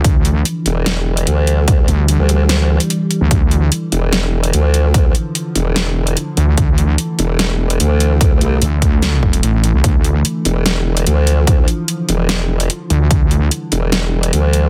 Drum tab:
HH |x-x-x-x-x--xx-x-|x-x-x-x-x--xx-x-|x-x-x-x-x--xx-x-|x-x-x-x-x--xx-x-|
SD |--------o-------|--------o-------|--------o-------|--------o-------|
BD |o---------------|o---------------|o---------------|o---------------|

HH |x-x-x-x-x--xx-x-|x-x-x-x-x--xx-x-|x-x-x-x-x--xx-x-|x-x-x-x-x--xx-x-|
SD |--------o-------|--------o-------|--------o-------|--------o-------|
BD |o---------------|o-----o---o-----|o---------------|o---------------|

HH |x-x-x-x-x--xx-x-|
SD |--------o-------|
BD |o---------------|